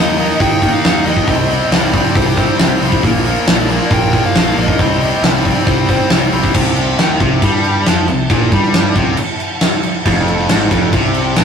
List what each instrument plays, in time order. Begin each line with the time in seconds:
Already playing: picked electric bass D#2, distorted electric guitar D#3 A#3 D#4, lead electric guitar D#5
0.18 distorted electric guitar D#3 A#3 D#4, open hi-hat
0.30 snare
0.40 picked electric bass D#2, distorted electric guitar D#3 A#3 D#4, lead electric guitar G5, kick, open hi-hat
0.62 distorted electric guitar D#3 A#3 D#4, kick, open hi-hat
0.73 lead electric guitar F5
0.84 picked electric bass D#2, distorted electric guitar D#3 A#3 D#4, snare, open hi-hat
1.05 picked electric bass D#2, distorted electric guitar D#3 A#3 D#4, lead electric guitar D#5, open hi-hat
1.17 kick, snare
1.27 picked electric bass C2, distorted electric guitar C3 G3 C4, kick, open hi-hat
1.50 distorted electric guitar C3 G3 C4, open hi-hat
1.71 picked electric bass C2, distorted electric guitar C3 G3 C4, lead electric guitar D5, snare, open hi-hat
1.93 distorted electric guitar C3 G3 C4, kick, open hi-hat
2.06 snare
2.15 picked electric bass C2, distorted electric guitar C3 G3 C4, lead electric guitar C5, kick, open hi-hat
2.37 distorted electric guitar C3 G3 C4, kick, open hi-hat
2.59 picked electric bass C2, distorted electric guitar C3 G3 C4, snare, open hi-hat
2.81 picked electric bass C2, distorted electric guitar C3 G3 C4, open hi-hat
2.92 kick
3.03 picked electric bass A#1, distorted electric guitar A#2 F3 A#3, kick, open hi-hat
3.25 distorted electric guitar A#2 F3 A#3, open hi-hat
3.47 picked electric bass A#1, distorted electric guitar A#2 F3 A#3, lead electric guitar D5, snare, open hi-hat
3.69 distorted electric guitar A#2 F3 A#3, open hi-hat
3.81 snare
3.90 picked electric bass A#1, distorted electric guitar A#2 F3 A#3, lead electric guitar G5, kick, open hi-hat
4.13 distorted electric guitar A#2 F3 A#3, kick, open hi-hat
4.26 lead electric guitar F5
4.35 picked electric bass A#1, distorted electric guitar A#2 F3 A#3, snare, open hi-hat
4.57 picked electric bass A#1, distorted electric guitar A#2 F3 A#3, lead electric guitar D#5, open hi-hat
4.68 kick
4.79 picked electric bass C2, distorted electric guitar C3 G3 C4, kick, open hi-hat
5.01 distorted electric guitar C3 G3 C4, open hi-hat
5.22 picked electric bass C2, distorted electric guitar C3 G3 C4, lead electric guitar D5, snare, open hi-hat
5.45 distorted electric guitar C3 G3 C4, kick, open hi-hat
5.57 snare
5.67 picked electric bass C2, distorted electric guitar C3 G3 C4, lead electric guitar C5, kick, open hi-hat
5.89 distorted electric guitar C3 G3 C4, kick, open hi-hat
6.10 picked electric bass C2, distorted electric guitar C3 G3 C4, snare, open hi-hat
6.32 picked electric bass C2, distorted electric guitar C3 G3 C4, open hi-hat
6.44 kick, snare
6.54 picked electric bass C2, distorted electric guitar C3, kick, crash
6.76 crash
6.98 picked electric bass D#2, distorted electric guitar D#3, snare, crash
7.20 picked electric bass C2, distorted electric guitar C3, kick, crash
7.42 picked electric bass G2, distorted electric guitar G3, kick, crash
7.64 crash
7.86 picked electric bass F2, distorted electric guitar F3, snare, crash
8.08 picked electric bass C2, distorted electric guitar C3, crash
8.30 picked electric bass A#1, distorted electric guitar A#2, kick, crash
8.52 picked electric bass G2, distorted electric guitar G3, kick, crash
8.63 snare
8.74 snare, crash
8.95 picked electric bass C2, distorted electric guitar C3, kick, crash
9.17 muted overdriven electric guitar stroke, muted picked electric bass stroke, muted distorted electric guitar stroke, crash
9.40 crash
9.61 snare, crash
9.83 crash
10.06 picked electric bass F1, distorted electric guitar F2, kick, crash
10.28 crash
10.39 snare
10.49 picked electric bass G#1, distorted electric guitar G#2, snare, crash
10.71 picked electric bass F1, distorted electric guitar F2, kick, crash
10.93 picked electric bass C2, distorted electric guitar C3, kick, crash
11.14 crash
11.36 picked electric bass A#1, distorted electric guitar A#2, snare, crash